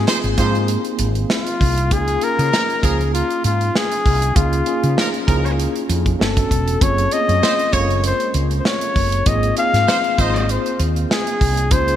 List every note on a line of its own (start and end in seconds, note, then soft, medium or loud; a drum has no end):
0.00 0.38 A#3 medium
0.00 0.38 C4 medium
0.00 0.38 D#4 medium
0.00 0.39 F4 medium
0.00 1.93 G4 medium
0.00 0.39 G#4 medium
0.07 0.18 F3 loud
0.07 0.18 D#4 medium
0.07 0.18 C5 loud
0.07 snare loud
0.24 0.35 G#1 medium
0.24 closed hi-hat soft
0.38 0.76 G#2 loud
0.38 0.58 F3 medium
0.38 1.39 A#3 medium
0.38 1.39 C4 medium
0.38 0.58 D#4 medium
0.38 1.39 D#4 medium
0.38 1.40 F4 medium
0.38 1.40 G#4 medium
0.38 0.58 C5 loud
0.38 kick medium
0.38 closed hi-hat medium
0.55 closed hi-hat soft
0.68 closed hi-hat medium
0.85 closed hi-hat soft
0.99 1.23 G#1 loud
0.99 closed hi-hat medium
1.15 closed hi-hat soft
1.30 1.94 F4 medium
1.30 snare medium
1.47 closed hi-hat medium
1.61 1.91 C2 loud
1.61 kick medium
1.61 open hi-hat medium
1.78 closed hi-hat medium
1.91 2.16 C#2 loud
1.91 2.17 A#3 medium
1.91 2.17 C#4 medium
1.91 2.17 D#4 medium
1.91 2.17 F4 medium
1.91 2.17 G#4 medium
1.91 2.25 G#4 loud
1.91 kick loud
1.91 closed hi-hat medium
2.08 closed hi-hat medium
2.21 2.73 A#3 medium
2.21 2.73 C#4 medium
2.21 2.73 D#4 medium
2.21 2.73 F4 medium
2.21 2.73 G#4 medium
2.21 2.86 A#4 loud
2.21 closed hi-hat medium
2.38 2.50 C#3 loud
2.38 closed hi-hat medium
2.52 2.63 F3 loud
2.52 2.63 D#4 loud
2.52 2.63 A#4 loud
2.52 snare loud
2.70 closed hi-hat soft
2.82 3.21 C#2 medium
2.82 3.02 F3 loud
2.82 3.84 A#3 medium
2.82 3.84 C#4 medium
2.82 3.02 D#4 medium
2.82 3.85 D#4 medium
2.82 3.85 F4 medium
2.82 3.85 G#4 medium
2.82 3.13 G#4 medium
2.82 3.03 A#4 medium
2.82 kick medium
2.82 closed hi-hat medium
3.01 closed hi-hat soft
3.14 3.42 F4 loud
3.14 closed hi-hat medium
3.30 closed hi-hat soft
3.44 3.69 G#2 medium
3.44 3.78 F4 medium
3.44 closed hi-hat medium
3.61 closed hi-hat soft
3.75 4.38 G#4 loud
3.75 snare medium
3.92 closed hi-hat medium
4.06 4.30 C2 loud
4.06 kick medium
4.06 open hi-hat medium
4.22 closed hi-hat medium
4.36 4.61 C#2 loud
4.36 4.62 A#3 medium
4.36 4.62 C#4 medium
4.36 4.62 D#4 medium
4.36 5.28 F4 medium
4.36 4.62 F4 medium
4.36 4.62 G#4 medium
4.36 kick loud
4.36 closed hi-hat medium
4.53 closed hi-hat medium
4.66 5.18 A#3 medium
4.66 5.18 C#4 medium
4.66 5.18 D#4 medium
4.66 5.18 F4 medium
4.66 5.18 G#4 medium
4.66 closed hi-hat medium
4.83 4.95 C#3 medium
4.83 closed hi-hat medium
4.97 5.08 F3 loud
4.97 5.08 D#4 loud
4.97 5.08 A#4 loud
4.97 snare loud
5.14 closed hi-hat soft
5.27 5.65 C#2 loud
5.27 5.54 F3 medium
5.27 6.20 A#3 medium
5.27 6.18 C#4 medium
5.27 5.54 D#4 medium
5.27 6.20 D#4 medium
5.27 5.35 E4 medium
5.27 6.20 G#4 medium
5.27 5.54 A#4 loud
5.27 kick loud
5.27 closed hi-hat medium
5.35 6.24 F4 medium
5.46 closed hi-hat soft
5.60 closed hi-hat medium
5.76 closed hi-hat soft
5.89 6.14 F2 loud
5.89 closed hi-hat medium
6.06 kick medium
6.06 closed hi-hat soft
6.19 6.45 G1 medium
6.19 6.71 B3 medium
6.19 6.71 C#4 medium
6.19 6.71 D4 medium
6.19 6.71 F#4 medium
6.19 6.71 A4 medium
6.19 6.84 A4 medium
6.19 snare medium
6.37 kick loud
6.37 closed hi-hat medium
6.51 6.75 E1 medium
6.51 kick medium
6.51 closed hi-hat medium
6.68 closed hi-hat medium
6.80 7.06 F#1 loud
6.80 7.06 A#3 medium
6.80 7.06 C4 medium
6.80 7.07 C#4 medium
6.80 7.07 F4 medium
6.80 7.07 G#4 medium
6.80 7.15 C#5 loud
6.80 kick loud
6.80 closed hi-hat medium
6.98 closed hi-hat medium
7.11 7.19 A3 medium
7.11 7.63 C4 medium
7.11 7.63 C#4 medium
7.11 7.63 F4 medium
7.11 7.63 G#4 medium
7.11 7.75 D#5 loud
7.11 closed hi-hat medium
7.18 7.66 A#3 medium
7.28 7.40 F#2 medium
7.28 closed hi-hat medium
7.42 7.53 G#3 loud
7.42 7.53 F4 medium
7.42 7.53 C5 loud
7.42 snare loud
7.59 closed hi-hat soft
7.73 8.11 F#1 loud
7.73 8.74 G#3 medium
7.73 8.74 A#3 medium
7.73 7.93 A#3 medium
7.73 8.75 C#4 medium
7.73 8.75 F4 medium
7.73 7.93 G#4 medium
7.73 7.81 A4 medium
7.73 7.93 C#5 loud
7.73 8.04 C#5 medium
7.73 kick medium
7.73 closed hi-hat medium
7.80 8.78 A#4 medium
7.90 closed hi-hat soft
8.04 8.34 C5 medium
8.04 closed hi-hat medium
8.20 closed hi-hat soft
8.34 8.59 C#2 loud
8.34 closed hi-hat medium
8.51 closed hi-hat soft
8.59 8.68 C5 medium
8.65 9.29 C#5 medium
8.65 snare loud
8.81 closed hi-hat medium
8.96 9.20 F#1 medium
8.96 kick medium
8.96 open hi-hat medium
9.12 closed hi-hat medium
9.26 9.51 G#1 loud
9.26 9.52 A#3 medium
9.26 9.52 C4 medium
9.26 9.52 D#4 medium
9.26 9.52 F4 medium
9.26 9.53 G#4 medium
9.26 9.58 D#5 medium
9.26 kick loud
9.26 closed hi-hat loud
9.43 closed hi-hat medium
9.56 10.08 A#3 medium
9.56 10.08 C4 medium
9.56 10.08 D#4 medium
9.56 10.08 F4 medium
9.56 10.09 G#4 medium
9.56 10.22 F5 loud
9.56 closed hi-hat medium
9.73 9.85 G#2 medium
9.73 snare soft
9.73 closed hi-hat medium
9.87 9.98 F3 loud
9.87 9.98 D#4 loud
9.87 9.98 C5 loud
9.87 snare loud
10.04 closed hi-hat soft
10.17 10.56 G#1 loud
10.17 10.45 F3 loud
10.17 11.19 A#3 medium
10.17 11.19 C4 medium
10.17 10.44 D#4 medium
10.17 11.19 D#4 medium
10.17 11.20 F4 medium
10.17 11.20 G#4 medium
10.17 10.44 C5 loud
10.17 10.52 D#5 medium
10.17 kick medium
10.17 closed hi-hat medium
10.36 closed hi-hat soft
10.49 10.80 C5 medium
10.49 closed hi-hat medium
10.66 closed hi-hat soft
10.79 11.04 D#2 loud
10.79 closed hi-hat medium
10.96 closed hi-hat soft
11.11 11.73 G#4 medium
11.11 snare loud
11.27 closed hi-hat soft
11.41 11.71 C2 medium
11.41 kick medium
11.41 open hi-hat medium
11.57 closed hi-hat medium
11.71 11.96 C#2 loud
11.71 11.96 A#3 medium
11.71 11.96 C#4 medium
11.71 11.96 D#4 medium
11.71 11.96 F4 medium
11.71 11.96 G#4 medium
11.71 11.96 C5 loud
11.71 kick loud
11.71 closed hi-hat medium
11.88 closed hi-hat medium